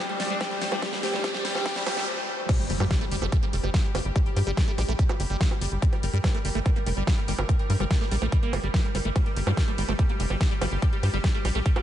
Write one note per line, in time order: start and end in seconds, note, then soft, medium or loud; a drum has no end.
0.00 2.50 A3 medium
0.00 2.51 C5 medium
0.00 riser medium
0.09 0.16 G3 medium
0.09 closed hi-hat soft
0.20 0.27 G3 medium
0.20 0.23 G3 medium
0.20 snare medium
0.20 open hi-hat loud
0.30 0.35 G3 loud
0.30 0.37 D4 medium
0.30 closed hi-hat soft
0.41 0.43 G3 loud
0.41 0.48 G4 loud
0.41 kick loud
0.41 snare medium
0.41 closed hi-hat loud
0.41 high bongo soft
0.51 0.58 G3 medium
0.51 closed hi-hat soft
0.61 0.69 G3 medium
0.61 0.64 G3 medium
0.61 snare medium
0.61 open hi-hat loud
0.72 0.76 G3 loud
0.72 0.79 D4 loud
0.72 closed hi-hat soft
0.72 high bongo medium
0.82 0.85 G3 loud
0.82 0.89 G4 loud
0.82 kick loud
0.82 snare medium
0.82 closed hi-hat loud
0.93 1.00 G3 medium
0.93 snare medium
0.93 closed hi-hat soft
1.03 1.06 G3 loud
1.03 1.10 G4 loud
1.03 snare loud
1.03 open hi-hat loud
1.14 1.21 G3 medium
1.14 snare medium
1.14 closed hi-hat soft
1.14 high bongo soft
1.24 1.27 G3 loud
1.24 1.31 G4 loud
1.24 kick loud
1.24 snare loud
1.24 closed hi-hat loud
1.34 1.41 G3 medium
1.34 snare medium
1.34 closed hi-hat soft
1.45 1.48 G3 loud
1.45 1.52 G4 loud
1.45 snare loud
1.45 open hi-hat loud
1.55 1.62 G3 medium
1.55 snare medium
1.55 closed hi-hat soft
1.55 high bongo soft
1.66 1.68 G3 loud
1.66 1.73 G4 loud
1.66 kick loud
1.66 snare loud
1.66 closed hi-hat medium
1.76 1.83 G3 medium
1.76 snare loud
1.76 closed hi-hat soft
1.86 1.89 G3 loud
1.86 1.94 G4 loud
1.86 snare loud
1.86 open hi-hat loud
1.86 high bongo medium
1.97 2.04 G3 medium
1.97 snare loud
1.97 closed hi-hat soft
2.49 11.82 G3 medium
2.49 2.52 G3 loud
2.49 5.84 G4 medium
2.49 kick loud
2.49 closed hi-hat medium
2.49 crash loud
2.49 high bongo soft
2.49 impact medium
2.59 closed hi-hat soft
2.70 2.76 G1 loud
2.70 2.73 G3 medium
2.70 open hi-hat loud
2.80 2.87 G2 medium
2.80 2.85 G3 loud
2.80 closed hi-hat soft
2.80 high bongo medium
2.91 2.95 G3 medium
2.91 kick loud
2.91 snare loud
2.91 closed hi-hat loud
3.01 3.06 A3 medium
3.01 closed hi-hat soft
3.11 3.18 G1 loud
3.11 3.16 G3 medium
3.11 open hi-hat loud
3.22 3.28 G1 medium
3.22 3.26 A3 loud
3.22 high bongo soft
3.32 3.37 G3 medium
3.32 kick loud
3.32 closed hi-hat loud
3.43 3.45 A#3 medium
3.43 closed hi-hat soft
3.53 3.60 F1 medium
3.53 3.56 G3 medium
3.53 open hi-hat loud
3.64 3.70 G1 medium
3.64 3.70 G3 medium
3.64 closed hi-hat soft
3.64 high bongo soft
3.74 3.77 A3 medium
3.74 kick loud
3.74 snare loud
3.74 closed hi-hat loud
3.84 closed hi-hat soft
3.95 4.01 G1 medium
3.95 3.99 G3 medium
3.95 open hi-hat loud
3.95 high bongo medium
4.05 4.12 G1 medium
4.05 closed hi-hat soft
4.16 4.18 G3 loud
4.16 kick loud
4.16 closed hi-hat medium
4.26 closed hi-hat soft
4.36 4.43 G2 medium
4.36 4.39 G3 medium
4.36 open hi-hat loud
4.36 high bongo soft
4.47 4.53 G1 medium
4.47 4.51 G3 loud
4.47 closed hi-hat soft
4.57 4.62 G3 medium
4.57 kick loud
4.57 snare loud
4.57 closed hi-hat loud
4.68 4.72 A3 medium
4.68 closed hi-hat soft
4.78 4.85 A#1 loud
4.78 4.83 G3 medium
4.78 open hi-hat loud
4.78 high bongo soft
4.89 4.95 A#1 medium
4.89 4.93 A3 loud
4.89 closed hi-hat soft
4.99 5.04 G3 medium
4.99 kick loud
4.99 closed hi-hat medium
5.09 5.12 A#3 medium
5.09 closed hi-hat soft
5.09 high bongo medium
5.20 5.26 G1 medium
5.20 5.23 G3 medium
5.20 open hi-hat loud
5.30 5.37 G1 medium
5.30 5.37 G3 medium
5.30 closed hi-hat soft
5.41 5.43 A3 medium
5.41 kick loud
5.41 snare loud
5.41 closed hi-hat medium
5.51 closed hi-hat soft
5.51 high bongo soft
5.61 5.68 G1 medium
5.61 5.66 G3 medium
5.61 open hi-hat loud
5.72 5.78 G1 medium
5.72 closed hi-hat soft
5.82 5.85 G3 loud
5.82 9.18 A#4 medium
5.82 kick loud
5.82 closed hi-hat medium
5.93 closed hi-hat soft
5.93 high bongo soft
6.03 6.09 G1 medium
6.03 6.06 G3 medium
6.03 open hi-hat loud
6.14 6.20 G2 medium
6.14 6.18 G3 loud
6.14 closed hi-hat soft
6.24 6.29 G3 medium
6.24 kick loud
6.24 snare loud
6.24 closed hi-hat medium
6.24 high bongo medium
6.34 6.39 A3 medium
6.34 closed hi-hat soft
6.45 6.51 G1 medium
6.45 6.49 G3 medium
6.45 open hi-hat loud
6.55 6.62 G1 medium
6.55 6.60 A3 loud
6.55 closed hi-hat soft
6.66 6.70 G3 medium
6.66 kick loud
6.66 closed hi-hat medium
6.66 high bongo soft
6.76 6.79 A#3 medium
6.76 closed hi-hat soft
6.86 6.93 F1 loud
6.86 6.89 G3 medium
6.86 open hi-hat loud
6.97 7.03 G1 medium
6.97 7.04 G3 medium
6.97 closed hi-hat soft
7.07 7.10 A3 medium
7.07 kick loud
7.07 snare loud
7.07 closed hi-hat medium
7.07 high bongo soft
7.18 closed hi-hat soft
7.28 7.34 G1 medium
7.28 7.33 G3 medium
7.28 open hi-hat loud
7.39 7.45 G1 medium
7.39 closed hi-hat soft
7.39 high bongo medium
7.49 7.52 G3 loud
7.49 kick loud
7.49 closed hi-hat medium
7.59 closed hi-hat soft
7.70 7.76 G2 loud
7.70 7.73 G3 medium
7.70 open hi-hat loud
7.80 7.87 G1 medium
7.80 7.85 G3 loud
7.80 closed hi-hat soft
7.80 high bongo soft
7.91 7.95 G3 medium
7.91 kick loud
7.91 snare loud
7.91 closed hi-hat medium
8.01 8.06 A3 medium
8.01 snare soft
8.01 closed hi-hat soft
8.11 8.18 A#1 loud
8.11 8.16 G3 medium
8.11 open hi-hat loud
8.22 8.28 A#1 medium
8.22 8.26 A3 loud
8.22 closed hi-hat soft
8.22 high bongo soft
8.32 8.37 G3 medium
8.32 kick loud
8.32 closed hi-hat medium
8.43 8.55 A#3 medium
8.43 closed hi-hat soft
8.53 8.59 G1 loud
8.53 8.60 G3 medium
8.53 open hi-hat loud
8.53 high bongo medium
8.64 8.70 G1 medium
8.64 8.68 G3 medium
8.64 closed hi-hat soft
8.74 8.81 F3 medium
8.74 kick loud
8.74 snare loud
8.74 closed hi-hat medium
8.84 closed hi-hat soft
8.95 9.01 G1 medium
8.95 8.98 A3 medium
8.95 open hi-hat loud
8.95 high bongo soft
9.05 9.12 G1 medium
9.05 9.10 A3 medium
9.16 9.18 G3 loud
9.16 11.82 G4 medium
9.16 kick loud
9.16 closed hi-hat medium
9.16 ride medium
9.16 high bongo soft
9.26 closed hi-hat soft
9.36 9.43 G1 medium
9.36 open hi-hat loud
9.36 ride medium
9.47 9.53 G2 medium
9.47 9.51 G3 loud
9.47 high bongo medium
9.57 9.62 G3 medium
9.57 kick loud
9.57 snare loud
9.57 closed hi-hat medium
9.57 ride medium
9.68 9.72 A3 medium
9.68 closed hi-hat soft
9.78 9.84 G1 loud
9.78 9.83 G3 medium
9.78 open hi-hat loud
9.78 ride medium
9.89 9.95 G1 medium
9.89 9.93 A3 loud
9.89 closed hi-hat soft
9.89 high bongo soft
9.99 10.04 G3 medium
9.99 kick loud
9.99 closed hi-hat medium
9.99 ride medium
10.09 10.12 A#3 medium
10.09 closed hi-hat soft
10.20 10.26 F1 loud
10.20 10.23 G3 medium
10.20 open hi-hat loud
10.20 ride medium
10.30 10.37 G1 medium
10.30 10.37 G3 medium
10.30 high bongo soft
10.41 10.43 A3 medium
10.41 kick loud
10.41 snare loud
10.41 closed hi-hat medium
10.41 ride medium
10.51 10.54 G3 medium
10.51 closed hi-hat soft
10.61 10.68 G1 medium
10.61 10.66 G3 medium
10.61 open hi-hat loud
10.61 ride medium
10.61 high bongo medium
10.72 10.78 G1 medium
10.82 10.85 G3 loud
10.82 kick loud
10.82 closed hi-hat medium
10.82 ride medium
10.93 closed hi-hat soft
11.03 11.09 G2 medium
11.03 open hi-hat loud
11.03 ride medium
11.03 high bongo soft
11.14 11.20 G1 medium
11.14 11.18 G3 loud
11.14 closed hi-hat soft
11.24 11.29 G3 medium
11.24 kick loud
11.24 snare loud
11.24 closed hi-hat medium
11.24 ride medium
11.34 11.39 A3 medium
11.34 closed hi-hat soft
11.45 11.51 A#1 loud
11.45 11.49 G3 medium
11.45 open hi-hat loud
11.45 ride medium
11.45 high bongo soft
11.55 11.62 A#1 medium
11.55 11.60 A3 loud
11.66 11.70 G3 medium
11.66 kick loud
11.66 closed hi-hat medium
11.66 ride medium
11.76 11.79 A#3 medium
11.76 closed hi-hat soft
11.76 high bongo medium